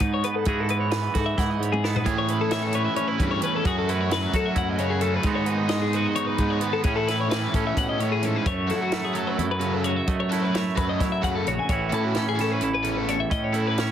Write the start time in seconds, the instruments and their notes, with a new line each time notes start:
Already playing: clean electric guitar G#3 B3 D#4 F#4 B4
0.00 clean electric guitar G#2, fingered electric bass G#2, kick, closed hi-hat
0.14 clean electric guitar C#5
0.24 clean electric guitar B3 B4, closed hi-hat
0.36 clean electric guitar A4
0.45 clean electric guitar G#2 E3 B3 E4 F#4 G#4, fingered electric bass G#2, kick, closed hi-hat
0.60 clean electric guitar A4
0.69 clean electric guitar E4 B4, closed hi-hat
0.80 clean electric guitar C#5
0.90 clean electric guitar E3 B4, snare, closed hi-hat
1.14 fingered electric bass G#2, clean electric guitar F#4 A4, kick, snare, closed hi-hat
1.26 clean electric guitar E5
1.37 fingered electric bass G#2, clean electric guitar E4 F#5, kick, snare, closed hi-hat
1.50 clean electric guitar D#5
1.60 clean electric guitar G#2 C#5, closed hi-hat
1.72 clean electric guitar G#4, high tom
1.84 clean electric guitar B3 A4, snare
1.96 clean electric guitar B4, floor tom
2.04 overdriven electric guitar A2 E3 A3 C#4 E4, clean electric guitar A2 G#4, fingered electric bass A2, kick, closed hi-hat
2.18 clean electric guitar C#5
2.28 overdriven electric guitar A3 C#4 E4, clean electric guitar E4 B4, closed hi-hat
2.41 clean electric guitar A4
2.50 overdriven electric guitar A2 E3 A3 C#4 E4, clean electric guitar E3 E5, snare, closed hi-hat
2.63 clean electric guitar A4
2.73 overdriven electric guitar A3 C#4 E4, clean electric guitar B4 C#5, closed hi-hat
2.85 clean electric guitar E5
2.96 clean electric guitar C#4 C#5, closed hi-hat
3.08 clean electric guitar E4 B4
3.18 clean electric guitar E2, fingered electric bass G2, overdriven electric guitar A3 C#4 E4, kick, closed hi-hat
3.31 clean electric guitar C#5
3.41 overdriven electric guitar E3 A3 C#4 E4, clean electric guitar C#4 B4, closed hi-hat
3.56 clean electric guitar A4
3.64 fingered electric bass F#2, clean electric guitar F#2 F#4 G#4, overdriven electric guitar F#3 A3 C#4 F#4, kick, closed hi-hat
3.78 clean electric guitar A4
3.87 overdriven electric guitar A3 C#4 F#4, clean electric guitar E4 B4, closed hi-hat
4.01 clean electric guitar C#5
4.10 clean electric guitar F#3 B4, overdriven electric guitar F#3 A3 C#4, snare, closed hi-hat
4.14 overdriven electric guitar F#4
4.33 fingered electric bass F#3, overdriven electric guitar A3 C#4 F#4, clean electric guitar F#4 A4, kick, closed hi-hat
4.46 clean electric guitar E5
4.55 fingered electric bass F#2, clean electric guitar E4 F#5, kick, closed hi-hat
4.69 clean electric guitar D#5
4.77 clean electric guitar C#3 C#5, overdriven electric guitar A3 C#4 F#4, closed hi-hat
4.90 clean electric guitar G#4
5.01 overdriven electric guitar F#3 A3 C#4 F#4, clean electric guitar A3 A4, closed hi-hat
5.14 clean electric guitar B4
5.23 overdriven electric guitar G#2 D#3 G#3 B3 D#4, fingered electric bass G#2, clean electric guitar G#2 G#3 D#4, kick, closed hi-hat
5.27 clean electric guitar B3 F#4
5.35 clean electric guitar C#5
5.46 overdriven electric guitar G#3 B3 D#4, clean electric guitar B4, closed hi-hat
5.50 clean electric guitar D#4
5.58 clean electric guitar G#4
5.68 overdriven electric guitar G#2 D#3 G#3 B3 D#4, clean electric guitar G#3 D#5, snare, closed hi-hat
5.82 clean electric guitar G#4
5.91 overdriven electric guitar G#3 B3 D#4, clean electric guitar B4, closed hi-hat
5.96 clean electric guitar F#4
6.06 clean electric guitar D#5
6.16 clean electric guitar D#4 C#5, closed hi-hat
6.27 clean electric guitar B4
6.38 fingered electric bass G#2, clean electric guitar G#2, overdriven electric guitar G#3 B3 D#4, kick, closed hi-hat
6.50 clean electric guitar C#5
6.61 overdriven electric guitar D#3 G#3 B3 D#4, clean electric guitar B3 B4, closed hi-hat
6.73 clean electric guitar A4
6.84 overdriven electric guitar A2 E3 A3 C#4 E4, fingered electric bass A2, clean electric guitar A2 C#4 G#4, kick, closed hi-hat
6.96 clean electric guitar E4 A4
7.07 overdriven electric guitar A3 C#4 E4, clean electric guitar E4 B4, snare, closed hi-hat
7.21 clean electric guitar C#5
7.28 overdriven electric guitar A2 E3 A3 C#4 E4, clean electric guitar E3 B4, snare, closed hi-hat
7.52 fingered electric bass A2, overdriven electric guitar A3 C#4 E4, clean electric guitar C#4 A4, kick, closed hi-hat
7.67 clean electric guitar E5
7.77 fingered electric bass A2, clean electric guitar B2 F#5, kick, closed hi-hat
7.89 clean electric guitar D#5
7.98 overdriven electric guitar A3 C#4 E4, clean electric guitar C#5, closed hi-hat
8.02 clean electric guitar A2
8.12 clean electric guitar G#4
8.20 clean electric guitar G#2, overdriven electric guitar E3 A3 C#4 E4, closed hi-hat
8.25 clean electric guitar A4
8.36 clean electric guitar B4
8.46 fingered electric bass F#2, clean electric guitar F#2 A3 C#5, kick, closed hi-hat
8.68 overdriven electric guitar F#3 A3 C#4 F#4, fingered electric bass F#3, clean electric guitar E4 A4, snare, closed hi-hat
8.82 clean electric guitar F#4
8.92 clean electric guitar A3 A4, snare, closed hi-hat
9.05 clean electric guitar G#4
9.13 clean electric guitar F#3 A4, overdriven electric guitar F#3 A3 C#4 F#4, closed hi-hat
9.27 clean electric guitar B4
9.37 fingered electric bass F#2, clean electric guitar E4 A4, closed hi-hat
9.51 clean electric guitar B4
9.60 clean electric guitar C#3, overdriven electric guitar F#3 A3 C#4 F#4, closed hi-hat
9.74 clean electric guitar A4
9.84 clean electric guitar F#4 C#5, closed hi-hat
9.96 clean electric guitar E5
10.07 clean electric guitar F#2 A3 D#5, fingered electric bass F#3, kick, closed hi-hat
10.20 clean electric guitar C#5
10.29 overdriven electric guitar F#3 A3 C#4 F#4, clean electric guitar E4 A4, snare, closed hi-hat
10.42 clean electric guitar B4
10.54 clean electric guitar A3 C#5, snare, closed hi-hat
10.76 fingered electric bass F#2, overdriven electric guitar F#3 A3 C#4 F#4, clean electric guitar F#3 B4, kick, closed hi-hat
10.89 clean electric guitar D#5
11.00 fingered electric bass F#3, clean electric guitar E4 C#5, kick, snare, closed hi-hat
11.12 clean electric guitar E5
11.22 fingered electric bass F#2, clean electric guitar C#3 F#5, overdriven electric guitar F#3 A3 C#4 F#4, kick, closed hi-hat
11.35 clean electric guitar A4
11.46 fingered electric bass A#1, clean electric guitar F#4 C#5, closed hi-hat
11.59 clean electric guitar G#5
11.69 fingered electric bass A1, clean electric guitar A2 E3 C#4 E4 C#5, kick, closed hi-hat
11.73 clean electric guitar F#4
11.90 fingered electric bass A2, overdriven electric guitar A3 C#4 E4 A4, clean electric guitar E4, closed hi-hat
11.94 clean electric guitar A4
12.05 clean electric guitar F#4
12.15 clean electric guitar C#4 A4, snare, closed hi-hat
12.29 clean electric guitar G#4
12.36 clean electric guitar E3, overdriven electric guitar A3 C#4 E4 A4, snare, closed hi-hat
12.41 clean electric guitar A4
12.52 clean electric guitar B4
12.61 fingered electric bass A1, clean electric guitar E4 A4, closed hi-hat
12.74 clean electric guitar B4
12.83 clean electric guitar E2, overdriven electric guitar A3 C#4 E4 A4, closed hi-hat
12.97 clean electric guitar A4
13.08 clean electric guitar A4 C#5, closed hi-hat
13.20 clean electric guitar E5
13.30 clean electric guitar A2 C#4 D#5, fingered electric bass A2, kick, closed hi-hat
13.44 clean electric guitar C#5
13.53 overdriven electric guitar A3 C#4 E4 A4, clean electric guitar E4 A4, closed hi-hat
13.67 clean electric guitar B4
13.78 clean electric guitar C#4 C#5, snare, closed hi-hat